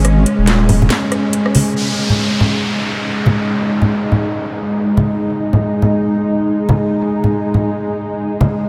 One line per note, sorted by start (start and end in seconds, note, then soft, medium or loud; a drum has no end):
0.00 0.25 G#1 loud
0.00 1.75 G#3 medium
0.00 1.79 C#4 medium
0.05 cross-stick medium
0.05 closed hi-hat medium
0.26 closed hi-hat medium
0.39 0.89 D#1 medium
0.47 snare medium
0.47 closed hi-hat medium
0.69 open hi-hat medium
0.69 low conga loud
0.82 high conga medium
0.82 low conga medium
0.90 snare loud
0.90 closed hi-hat medium
1.12 cross-stick medium
1.12 closed hi-hat medium
1.33 closed hi-hat medium
1.46 cross-stick medium
1.55 open hi-hat loud
1.55 high conga medium
1.76 8.69 G#3 medium
1.76 8.65 D#4 medium
1.76 downlifter medium
2.10 low conga medium
2.40 low conga medium
3.26 high conga medium
3.26 low conga medium
3.82 low conga medium
4.12 low conga medium
4.97 open hi-hat medium
4.97 high conga medium
4.97 low conga medium
5.53 low conga medium
5.82 low conga medium
6.69 open hi-hat medium
6.69 high conga medium
6.69 low conga medium
7.24 low conga medium
7.54 low conga medium
8.40 open hi-hat medium
8.40 high conga medium
8.40 low conga medium
8.62 8.69 B3 medium